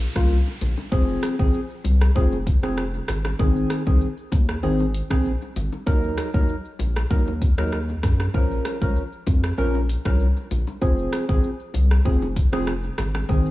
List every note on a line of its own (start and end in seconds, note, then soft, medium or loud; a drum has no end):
0.00 closed hi-hat medium
0.00 downlifter medium
0.00 shaker medium
0.15 0.40 C2 loud
0.15 0.37 C#3 medium
0.15 0.37 A#3 medium
0.15 0.37 F4 medium
0.15 kick medium
0.15 cross-stick medium
0.15 high bongo medium
0.15 shaker medium
0.30 shaker medium
0.47 high bongo medium
0.47 shaker medium
0.61 0.74 A#1 loud
0.61 closed hi-hat medium
0.61 low bongo medium
0.61 shaker medium
0.77 high bongo medium
0.77 shaker medium
0.92 1.17 F1 loud
0.92 1.35 F3 medium
0.92 1.35 C4 medium
0.92 1.36 G#4 loud
0.92 kick loud
0.92 high bongo medium
0.92 shaker medium
1.09 shaker medium
1.23 cross-stick medium
1.23 closed hi-hat medium
1.23 shaker medium
1.39 1.51 G#1 medium
1.39 1.60 F3 medium
1.39 1.60 C4 medium
1.39 1.61 G#4 medium
1.39 kick medium
1.39 shaker medium
1.54 shaker medium
1.70 shaker soft
1.84 2.10 C2 loud
1.84 closed hi-hat medium
1.84 high bongo medium
1.84 low bongo medium
1.84 shaker medium
2.01 cross-stick loud
2.01 shaker medium
2.15 2.54 F1 loud
2.15 2.38 F3 medium
2.15 2.38 C4 medium
2.15 2.38 G#4 loud
2.15 kick medium
2.15 high bongo medium
2.15 shaker medium
2.32 high bongo medium
2.32 shaker medium
2.47 kick medium
2.47 closed hi-hat medium
2.47 shaker medium
2.63 2.99 F1 medium
2.63 2.84 F3 medium
2.63 2.84 C4 medium
2.63 2.84 G#4 medium
2.63 cross-stick medium
2.63 high bongo medium
2.63 shaker medium
2.77 cross-stick medium
2.77 shaker medium
2.94 high bongo medium
2.94 shaker soft
3.08 3.33 G#1 loud
3.08 cross-stick loud
3.08 closed hi-hat medium
3.08 low bongo medium
3.08 shaker medium
3.25 cross-stick medium
3.25 high bongo medium
3.25 shaker medium
3.39 3.64 G#1 loud
3.39 3.83 D#3 loud
3.39 3.83 C4 medium
3.39 3.83 G#4 loud
3.39 kick loud
3.39 high bongo medium
3.39 shaker medium
3.56 shaker medium
3.70 cross-stick medium
3.70 closed hi-hat medium
3.70 shaker medium
3.87 3.98 C2 medium
3.87 4.08 D#3 medium
3.87 4.08 C4 medium
3.87 4.08 G#4 medium
3.87 kick medium
3.87 shaker medium
4.01 shaker medium
4.18 shaker soft
4.32 4.57 D#2 medium
4.32 kick loud
4.32 closed hi-hat medium
4.32 high bongo medium
4.32 low bongo medium
4.32 shaker medium
4.49 cross-stick medium
4.49 shaker medium
4.63 5.01 G#1 loud
4.63 4.85 D#3 medium
4.63 4.85 C4 medium
4.63 4.85 G#4 loud
4.63 high bongo medium
4.63 shaker medium
4.79 high bongo medium
4.79 shaker medium
4.94 closed hi-hat medium
4.94 shaker medium
5.10 5.35 A#1 medium
5.10 5.31 D#3 medium
5.10 5.32 C4 medium
5.10 5.32 G#4 medium
5.10 kick medium
5.10 cross-stick medium
5.10 high bongo medium
5.10 shaker medium
5.25 shaker medium
5.42 high bongo medium
5.42 shaker medium
5.56 5.69 G#1 medium
5.56 closed hi-hat medium
5.56 low bongo medium
5.56 shaker medium
5.72 high bongo medium
5.72 shaker medium
5.87 6.12 D#2 loud
5.87 6.30 F#3 medium
5.87 6.30 D#4 medium
5.87 6.30 A#4 loud
5.87 kick loud
5.87 high bongo medium
5.87 shaker medium
6.04 shaker medium
6.18 cross-stick medium
6.18 closed hi-hat medium
6.18 shaker medium
6.34 6.46 D#2 medium
6.34 6.55 F#3 medium
6.34 6.55 D#4 medium
6.34 6.55 A#4 medium
6.34 kick medium
6.34 shaker medium
6.49 shaker medium
6.65 shaker soft
6.79 7.04 A#1 medium
6.79 closed hi-hat medium
6.79 high bongo medium
6.79 low bongo medium
6.79 shaker medium
6.96 cross-stick loud
6.96 shaker medium
7.10 7.48 D#2 loud
7.10 7.33 F#3 medium
7.10 7.33 D#4 medium
7.10 7.33 A#4 loud
7.10 kick medium
7.10 high bongo medium
7.10 shaker medium
7.27 high bongo medium
7.27 shaker medium
7.42 kick medium
7.42 closed hi-hat medium
7.42 shaker medium
7.58 7.94 D#2 medium
7.58 7.79 F#3 medium
7.58 7.79 D#4 medium
7.58 7.79 A#4 medium
7.58 cross-stick medium
7.58 high bongo medium
7.58 shaker medium
7.72 cross-stick medium
7.72 shaker medium
7.89 high bongo medium
7.89 shaker medium
8.03 8.28 F#2 medium
8.03 kick loud
8.03 cross-stick loud
8.03 closed hi-hat medium
8.03 low bongo medium
8.03 shaker medium
8.20 cross-stick medium
8.20 high bongo medium
8.20 shaker medium
8.34 8.59 A#1 loud
8.34 8.78 F3 medium
8.34 8.78 C#4 medium
8.34 8.78 A#4 loud
8.34 kick loud
8.34 high bongo medium
8.34 shaker medium
8.51 shaker medium
8.65 cross-stick medium
8.65 closed hi-hat medium
8.65 shaker medium
8.81 8.93 C#2 medium
8.81 9.03 F3 medium
8.81 9.03 C#4 medium
8.81 9.03 A#4 medium
8.81 kick medium
8.81 shaker medium
8.96 shaker medium
9.12 shaker soft
9.27 9.52 F2 medium
9.27 kick loud
9.27 closed hi-hat medium
9.27 high bongo medium
9.27 low bongo medium
9.27 shaker medium
9.44 cross-stick loud
9.44 shaker medium
9.58 9.96 A#1 loud
9.58 9.80 F3 medium
9.58 9.80 C#4 medium
9.58 9.80 A#4 loud
9.58 high bongo medium
9.58 shaker medium
9.74 high bongo medium
9.74 shaker medium
9.89 closed hi-hat medium
9.89 shaker medium
10.05 10.30 C2 medium
10.05 10.26 F3 medium
10.05 10.26 C#4 medium
10.05 10.27 A#4 medium
10.05 kick medium
10.05 cross-stick medium
10.05 high bongo medium
10.05 shaker medium
10.20 shaker medium
10.36 high bongo medium
10.36 shaker medium
10.51 10.64 A#1 loud
10.51 closed hi-hat medium
10.51 low bongo medium
10.51 shaker medium
10.67 high bongo medium
10.67 shaker medium
10.81 11.06 F1 loud
10.81 11.25 F3 loud
10.81 11.25 C4 medium
10.81 11.25 G#4 loud
10.81 kick loud
10.81 high bongo medium
10.81 shaker medium
10.99 shaker medium
11.13 cross-stick medium
11.13 closed hi-hat medium
11.13 shaker medium
11.29 11.41 G#1 medium
11.29 11.50 F3 medium
11.29 11.50 C4 medium
11.29 11.50 G#4 medium
11.29 kick medium
11.29 shaker medium
11.44 shaker medium
11.60 shaker soft
11.74 11.99 C2 loud
11.74 closed hi-hat medium
11.74 high bongo medium
11.74 low bongo medium
11.74 shaker medium
11.91 cross-stick medium
11.91 shaker medium
12.05 12.43 F1 loud
12.05 12.27 F3 medium
12.05 12.28 C4 medium
12.05 12.28 G#4 loud
12.05 kick medium
12.05 high bongo medium
12.05 shaker medium
12.22 high bongo medium
12.22 shaker medium
12.36 kick loud
12.36 closed hi-hat medium
12.36 shaker medium
12.52 12.89 F1 loud
12.52 12.74 F3 medium
12.52 12.74 C4 medium
12.52 12.74 G#4 medium
12.52 cross-stick medium
12.52 high bongo medium
12.52 shaker medium
12.67 cross-stick medium
12.67 shaker medium
12.84 high bongo medium
12.84 shaker medium
12.98 13.23 G#1 medium
12.98 cross-stick loud
12.98 closed hi-hat medium
12.98 low bongo medium
12.98 shaker medium
13.15 cross-stick medium
13.15 high bongo medium
13.15 shaker medium
13.29 13.51 G#1 loud
13.29 13.51 D#3 loud
13.29 13.51 C4 medium
13.29 13.51 G#4 loud
13.29 kick loud
13.29 high bongo medium
13.29 shaker medium
13.46 shaker medium